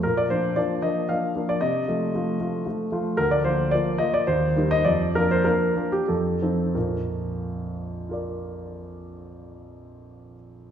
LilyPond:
<<
  \new Staff \with { instrumentName = "Grand piano" } { \time 3/4 \key bes \major \tempo 4 = 103 << { bes'16 d''16 c''8 d''8 ees''8 f''8. d''16 | ees''2~ ees''8 r8 | bes'16 d''16 c''8 d''8 ees''16 d''16 c''8. ees''16 | d''8 bes'16 c''16 bes'8. g'16 a'4 |
bes'2.~ | bes'2. | } \\ { r2. | r2. | r2. | r2. |
r2 <f' bes' d''>4~ | <f' bes' d''>2. | } >> }
  \new Staff \with { instrumentName = "Grand piano" } { \time 3/4 \key bes \major bes,8 <f bes d'>8 <f bes d'>8 <f bes d'>8 <f bes d'>8 <f bes d'>8 | c8 <f a f'>8 <f a f'>8 <f a f'>8 <f a f'>8 <f a f'>8 | d,8 <f bes f'>8 <f bes f'>8 <f bes f'>8 ees,8 <g bes ees'>8 | f,8 <f bes d'>8 <f bes d'>8 <f bes d'>8 f,8 <f c' ees'>8 |
<bes,, f,>2.~ | <bes,, f,>2. | }
>>